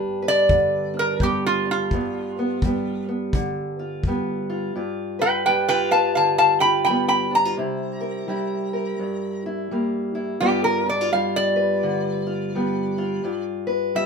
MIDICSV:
0, 0, Header, 1, 4, 480
1, 0, Start_track
1, 0, Tempo, 707547
1, 1304, Time_signature, 4, 2, 24, 8
1, 9538, End_track
2, 0, Start_track
2, 0, Title_t, "Resonator guitar played with a steel bar"
2, 0, Program_c, 0, 25
2, 192, Note_on_c, 0, 74, 101
2, 653, Note_off_c, 0, 74, 0
2, 673, Note_on_c, 0, 70, 85
2, 824, Note_off_c, 0, 70, 0
2, 836, Note_on_c, 0, 67, 79
2, 985, Note_off_c, 0, 67, 0
2, 994, Note_on_c, 0, 65, 82
2, 1144, Note_off_c, 0, 65, 0
2, 1160, Note_on_c, 0, 65, 82
2, 2085, Note_off_c, 0, 65, 0
2, 3538, Note_on_c, 0, 71, 68
2, 3538, Note_on_c, 0, 79, 73
2, 3695, Note_off_c, 0, 79, 0
2, 3696, Note_off_c, 0, 71, 0
2, 3703, Note_on_c, 0, 79, 75
2, 3704, Note_on_c, 0, 71, 62
2, 3849, Note_off_c, 0, 71, 0
2, 3851, Note_off_c, 0, 79, 0
2, 3856, Note_on_c, 0, 71, 68
2, 3860, Note_on_c, 0, 79, 81
2, 4008, Note_off_c, 0, 71, 0
2, 4012, Note_off_c, 0, 79, 0
2, 4012, Note_on_c, 0, 77, 64
2, 4015, Note_on_c, 0, 81, 80
2, 4165, Note_off_c, 0, 77, 0
2, 4174, Note_off_c, 0, 81, 0
2, 4174, Note_on_c, 0, 77, 55
2, 4185, Note_on_c, 0, 81, 78
2, 4321, Note_off_c, 0, 81, 0
2, 4324, Note_off_c, 0, 77, 0
2, 4330, Note_on_c, 0, 81, 81
2, 4331, Note_on_c, 0, 77, 63
2, 4476, Note_off_c, 0, 81, 0
2, 4479, Note_on_c, 0, 79, 72
2, 4485, Note_off_c, 0, 77, 0
2, 4486, Note_on_c, 0, 83, 84
2, 4636, Note_off_c, 0, 79, 0
2, 4644, Note_on_c, 0, 79, 71
2, 4646, Note_off_c, 0, 83, 0
2, 4654, Note_on_c, 0, 83, 72
2, 4797, Note_off_c, 0, 79, 0
2, 4800, Note_off_c, 0, 83, 0
2, 4805, Note_on_c, 0, 79, 59
2, 4808, Note_on_c, 0, 83, 71
2, 4962, Note_off_c, 0, 79, 0
2, 4970, Note_off_c, 0, 83, 0
2, 4987, Note_on_c, 0, 82, 86
2, 6396, Note_off_c, 0, 82, 0
2, 7059, Note_on_c, 0, 67, 75
2, 7215, Note_off_c, 0, 67, 0
2, 7219, Note_on_c, 0, 70, 77
2, 7375, Note_off_c, 0, 70, 0
2, 7391, Note_on_c, 0, 74, 75
2, 7541, Note_off_c, 0, 74, 0
2, 7548, Note_on_c, 0, 77, 70
2, 7699, Note_off_c, 0, 77, 0
2, 7709, Note_on_c, 0, 74, 88
2, 9117, Note_off_c, 0, 74, 0
2, 9470, Note_on_c, 0, 76, 81
2, 9538, Note_off_c, 0, 76, 0
2, 9538, End_track
3, 0, Start_track
3, 0, Title_t, "Steel-string acoustic guitar"
3, 0, Program_c, 1, 25
3, 0, Note_on_c, 1, 43, 66
3, 0, Note_on_c, 1, 55, 61
3, 0, Note_on_c, 1, 59, 57
3, 0, Note_on_c, 1, 62, 61
3, 0, Note_on_c, 1, 71, 67
3, 149, Note_off_c, 1, 71, 0
3, 151, Note_on_c, 1, 71, 60
3, 335, Note_on_c, 1, 50, 61
3, 633, Note_off_c, 1, 62, 0
3, 636, Note_on_c, 1, 62, 55
3, 819, Note_off_c, 1, 55, 0
3, 822, Note_on_c, 1, 55, 58
3, 823, Note_off_c, 1, 59, 0
3, 826, Note_on_c, 1, 59, 57
3, 1117, Note_off_c, 1, 62, 0
3, 1120, Note_on_c, 1, 62, 53
3, 1277, Note_off_c, 1, 50, 0
3, 1310, Note_off_c, 1, 43, 0
3, 1312, Note_on_c, 1, 43, 62
3, 1315, Note_off_c, 1, 59, 0
3, 1317, Note_on_c, 1, 59, 54
3, 1603, Note_off_c, 1, 59, 0
3, 1619, Note_on_c, 1, 59, 56
3, 1791, Note_off_c, 1, 55, 0
3, 1794, Note_on_c, 1, 55, 54
3, 1795, Note_off_c, 1, 59, 0
3, 1802, Note_on_c, 1, 59, 56
3, 2085, Note_off_c, 1, 59, 0
3, 2093, Note_on_c, 1, 59, 51
3, 2266, Note_on_c, 1, 50, 64
3, 2526, Note_off_c, 1, 71, 0
3, 2558, Note_off_c, 1, 62, 0
3, 2573, Note_on_c, 1, 65, 54
3, 2748, Note_off_c, 1, 55, 0
3, 2752, Note_off_c, 1, 59, 0
3, 2761, Note_on_c, 1, 55, 61
3, 2770, Note_on_c, 1, 59, 57
3, 3042, Note_off_c, 1, 65, 0
3, 3050, Note_on_c, 1, 65, 59
3, 3202, Note_off_c, 1, 50, 0
3, 3208, Note_off_c, 1, 65, 0
3, 3209, Note_off_c, 1, 55, 0
3, 3214, Note_off_c, 1, 59, 0
3, 3218, Note_off_c, 1, 43, 0
3, 3226, Note_on_c, 1, 43, 61
3, 3230, Note_on_c, 1, 65, 51
3, 3522, Note_on_c, 1, 71, 62
3, 3706, Note_off_c, 1, 65, 0
3, 3709, Note_on_c, 1, 55, 57
3, 3710, Note_on_c, 1, 62, 58
3, 3856, Note_off_c, 1, 62, 0
3, 3856, Note_on_c, 1, 65, 45
3, 3998, Note_off_c, 1, 71, 0
3, 4008, Note_on_c, 1, 71, 57
3, 4188, Note_on_c, 1, 50, 54
3, 4478, Note_off_c, 1, 65, 0
3, 4496, Note_on_c, 1, 65, 56
3, 4668, Note_off_c, 1, 55, 0
3, 4671, Note_on_c, 1, 55, 53
3, 4680, Note_on_c, 1, 59, 53
3, 4955, Note_off_c, 1, 65, 0
3, 4958, Note_on_c, 1, 62, 55
3, 5056, Note_off_c, 1, 62, 0
3, 5056, Note_on_c, 1, 65, 46
3, 5122, Note_off_c, 1, 50, 0
3, 5126, Note_off_c, 1, 71, 0
3, 5128, Note_off_c, 1, 59, 0
3, 5137, Note_on_c, 1, 48, 73
3, 5143, Note_off_c, 1, 43, 0
3, 5144, Note_off_c, 1, 65, 0
3, 5147, Note_on_c, 1, 64, 60
3, 5432, Note_on_c, 1, 70, 67
3, 5612, Note_off_c, 1, 55, 0
3, 5615, Note_on_c, 1, 55, 62
3, 5616, Note_off_c, 1, 64, 0
3, 5624, Note_on_c, 1, 64, 54
3, 5912, Note_off_c, 1, 70, 0
3, 5923, Note_on_c, 1, 70, 54
3, 6099, Note_off_c, 1, 48, 0
3, 6101, Note_on_c, 1, 43, 61
3, 6394, Note_off_c, 1, 64, 0
3, 6417, Note_on_c, 1, 64, 55
3, 6586, Note_off_c, 1, 55, 0
3, 6589, Note_on_c, 1, 55, 58
3, 6595, Note_on_c, 1, 58, 55
3, 6876, Note_off_c, 1, 64, 0
3, 6885, Note_on_c, 1, 64, 57
3, 7043, Note_off_c, 1, 70, 0
3, 7044, Note_off_c, 1, 64, 0
3, 7051, Note_off_c, 1, 43, 0
3, 7059, Note_on_c, 1, 43, 73
3, 7061, Note_off_c, 1, 55, 0
3, 7063, Note_on_c, 1, 55, 57
3, 7066, Note_off_c, 1, 58, 0
3, 7068, Note_on_c, 1, 59, 56
3, 7071, Note_on_c, 1, 65, 63
3, 7367, Note_off_c, 1, 65, 0
3, 7369, Note_on_c, 1, 62, 59
3, 7468, Note_off_c, 1, 62, 0
3, 7468, Note_on_c, 1, 65, 49
3, 7547, Note_off_c, 1, 55, 0
3, 7549, Note_on_c, 1, 55, 66
3, 7550, Note_off_c, 1, 65, 0
3, 7558, Note_on_c, 1, 65, 58
3, 7842, Note_on_c, 1, 71, 65
3, 8027, Note_on_c, 1, 50, 65
3, 8313, Note_off_c, 1, 65, 0
3, 8321, Note_on_c, 1, 65, 57
3, 8504, Note_off_c, 1, 59, 0
3, 8511, Note_off_c, 1, 55, 0
3, 8514, Note_on_c, 1, 55, 62
3, 8520, Note_on_c, 1, 59, 57
3, 8797, Note_off_c, 1, 65, 0
3, 8806, Note_on_c, 1, 65, 62
3, 8961, Note_off_c, 1, 50, 0
3, 8962, Note_off_c, 1, 71, 0
3, 8964, Note_off_c, 1, 65, 0
3, 8967, Note_off_c, 1, 59, 0
3, 8972, Note_off_c, 1, 43, 0
3, 8981, Note_on_c, 1, 43, 69
3, 8985, Note_on_c, 1, 65, 55
3, 9005, Note_off_c, 1, 55, 0
3, 9273, Note_on_c, 1, 71, 67
3, 9459, Note_off_c, 1, 65, 0
3, 9463, Note_on_c, 1, 55, 58
3, 9468, Note_on_c, 1, 65, 55
3, 9538, Note_off_c, 1, 43, 0
3, 9538, Note_off_c, 1, 55, 0
3, 9538, Note_off_c, 1, 65, 0
3, 9538, Note_off_c, 1, 71, 0
3, 9538, End_track
4, 0, Start_track
4, 0, Title_t, "Drums"
4, 335, Note_on_c, 9, 36, 71
4, 403, Note_off_c, 9, 36, 0
4, 815, Note_on_c, 9, 36, 64
4, 883, Note_off_c, 9, 36, 0
4, 1297, Note_on_c, 9, 36, 57
4, 1365, Note_off_c, 9, 36, 0
4, 1778, Note_on_c, 9, 36, 69
4, 1846, Note_off_c, 9, 36, 0
4, 2260, Note_on_c, 9, 36, 69
4, 2328, Note_off_c, 9, 36, 0
4, 2737, Note_on_c, 9, 36, 58
4, 2805, Note_off_c, 9, 36, 0
4, 9538, End_track
0, 0, End_of_file